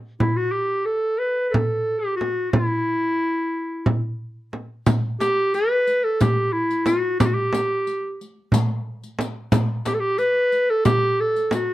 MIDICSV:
0, 0, Header, 1, 4, 480
1, 0, Start_track
1, 0, Tempo, 665927
1, 148, Time_signature, 7, 3, 24, 8
1, 8460, End_track
2, 0, Start_track
2, 0, Title_t, "Clarinet"
2, 0, Program_c, 0, 71
2, 151, Note_on_c, 0, 64, 78
2, 262, Note_on_c, 0, 66, 82
2, 273, Note_off_c, 0, 64, 0
2, 376, Note_on_c, 0, 67, 80
2, 387, Note_off_c, 0, 66, 0
2, 615, Note_on_c, 0, 69, 78
2, 626, Note_off_c, 0, 67, 0
2, 855, Note_on_c, 0, 71, 90
2, 866, Note_off_c, 0, 69, 0
2, 1070, Note_off_c, 0, 71, 0
2, 1070, Note_on_c, 0, 71, 71
2, 1088, Note_on_c, 0, 69, 84
2, 1099, Note_off_c, 0, 71, 0
2, 1434, Note_on_c, 0, 67, 78
2, 1445, Note_off_c, 0, 69, 0
2, 1554, Note_off_c, 0, 67, 0
2, 1558, Note_on_c, 0, 66, 73
2, 1805, Note_on_c, 0, 65, 86
2, 1815, Note_off_c, 0, 66, 0
2, 1913, Note_off_c, 0, 65, 0
2, 1913, Note_on_c, 0, 64, 86
2, 3015, Note_off_c, 0, 64, 0
2, 3752, Note_on_c, 0, 67, 97
2, 3997, Note_on_c, 0, 71, 103
2, 4008, Note_off_c, 0, 67, 0
2, 4356, Note_on_c, 0, 69, 86
2, 4367, Note_off_c, 0, 71, 0
2, 4478, Note_on_c, 0, 67, 89
2, 4488, Note_off_c, 0, 69, 0
2, 4703, Note_on_c, 0, 64, 84
2, 4714, Note_off_c, 0, 67, 0
2, 4945, Note_on_c, 0, 66, 81
2, 4956, Note_off_c, 0, 64, 0
2, 5184, Note_off_c, 0, 66, 0
2, 5191, Note_on_c, 0, 67, 84
2, 5233, Note_on_c, 0, 66, 74
2, 5243, Note_off_c, 0, 67, 0
2, 5295, Note_on_c, 0, 67, 82
2, 5306, Note_off_c, 0, 66, 0
2, 5908, Note_off_c, 0, 67, 0
2, 7112, Note_on_c, 0, 67, 81
2, 7165, Note_on_c, 0, 69, 76
2, 7176, Note_off_c, 0, 67, 0
2, 7206, Note_on_c, 0, 67, 97
2, 7217, Note_off_c, 0, 69, 0
2, 7340, Note_on_c, 0, 71, 105
2, 7350, Note_off_c, 0, 67, 0
2, 7713, Note_on_c, 0, 69, 89
2, 7723, Note_off_c, 0, 71, 0
2, 7819, Note_off_c, 0, 69, 0
2, 7823, Note_on_c, 0, 67, 97
2, 8076, Note_on_c, 0, 69, 89
2, 8087, Note_off_c, 0, 67, 0
2, 8310, Note_off_c, 0, 69, 0
2, 8321, Note_on_c, 0, 66, 76
2, 8460, Note_off_c, 0, 66, 0
2, 8460, End_track
3, 0, Start_track
3, 0, Title_t, "Frame drum"
3, 146, Note_on_c, 9, 64, 88
3, 218, Note_off_c, 9, 64, 0
3, 1111, Note_on_c, 9, 64, 87
3, 1183, Note_off_c, 9, 64, 0
3, 1593, Note_on_c, 9, 64, 62
3, 1665, Note_off_c, 9, 64, 0
3, 1826, Note_on_c, 9, 64, 100
3, 1898, Note_off_c, 9, 64, 0
3, 2782, Note_on_c, 9, 64, 89
3, 2854, Note_off_c, 9, 64, 0
3, 3266, Note_on_c, 9, 64, 57
3, 3338, Note_off_c, 9, 64, 0
3, 3507, Note_on_c, 9, 64, 103
3, 3579, Note_off_c, 9, 64, 0
3, 3752, Note_on_c, 9, 64, 58
3, 3824, Note_off_c, 9, 64, 0
3, 4477, Note_on_c, 9, 64, 88
3, 4549, Note_off_c, 9, 64, 0
3, 4943, Note_on_c, 9, 64, 73
3, 5015, Note_off_c, 9, 64, 0
3, 5191, Note_on_c, 9, 64, 96
3, 5263, Note_off_c, 9, 64, 0
3, 5425, Note_on_c, 9, 64, 76
3, 5497, Note_off_c, 9, 64, 0
3, 6140, Note_on_c, 9, 64, 84
3, 6212, Note_off_c, 9, 64, 0
3, 6621, Note_on_c, 9, 64, 76
3, 6693, Note_off_c, 9, 64, 0
3, 6862, Note_on_c, 9, 64, 98
3, 6934, Note_off_c, 9, 64, 0
3, 7108, Note_on_c, 9, 64, 67
3, 7180, Note_off_c, 9, 64, 0
3, 7824, Note_on_c, 9, 64, 89
3, 7896, Note_off_c, 9, 64, 0
3, 8297, Note_on_c, 9, 64, 86
3, 8369, Note_off_c, 9, 64, 0
3, 8460, End_track
4, 0, Start_track
4, 0, Title_t, "Riq"
4, 3506, Note_on_c, 9, 54, 56
4, 3578, Note_off_c, 9, 54, 0
4, 3755, Note_on_c, 9, 54, 45
4, 3827, Note_off_c, 9, 54, 0
4, 3994, Note_on_c, 9, 54, 20
4, 4066, Note_off_c, 9, 54, 0
4, 4233, Note_on_c, 9, 54, 22
4, 4305, Note_off_c, 9, 54, 0
4, 4473, Note_on_c, 9, 54, 54
4, 4545, Note_off_c, 9, 54, 0
4, 4832, Note_on_c, 9, 54, 19
4, 4905, Note_off_c, 9, 54, 0
4, 4948, Note_on_c, 9, 54, 40
4, 5020, Note_off_c, 9, 54, 0
4, 5191, Note_on_c, 9, 54, 64
4, 5263, Note_off_c, 9, 54, 0
4, 5438, Note_on_c, 9, 54, 46
4, 5510, Note_off_c, 9, 54, 0
4, 5673, Note_on_c, 9, 54, 22
4, 5745, Note_off_c, 9, 54, 0
4, 5920, Note_on_c, 9, 54, 18
4, 5992, Note_off_c, 9, 54, 0
4, 6154, Note_on_c, 9, 54, 68
4, 6226, Note_off_c, 9, 54, 0
4, 6512, Note_on_c, 9, 54, 19
4, 6585, Note_off_c, 9, 54, 0
4, 6636, Note_on_c, 9, 54, 46
4, 6708, Note_off_c, 9, 54, 0
4, 6862, Note_on_c, 9, 54, 76
4, 6935, Note_off_c, 9, 54, 0
4, 7103, Note_on_c, 9, 54, 47
4, 7175, Note_off_c, 9, 54, 0
4, 7340, Note_on_c, 9, 54, 20
4, 7412, Note_off_c, 9, 54, 0
4, 7585, Note_on_c, 9, 54, 18
4, 7657, Note_off_c, 9, 54, 0
4, 7822, Note_on_c, 9, 54, 63
4, 7894, Note_off_c, 9, 54, 0
4, 8190, Note_on_c, 9, 54, 18
4, 8263, Note_off_c, 9, 54, 0
4, 8306, Note_on_c, 9, 54, 45
4, 8379, Note_off_c, 9, 54, 0
4, 8460, End_track
0, 0, End_of_file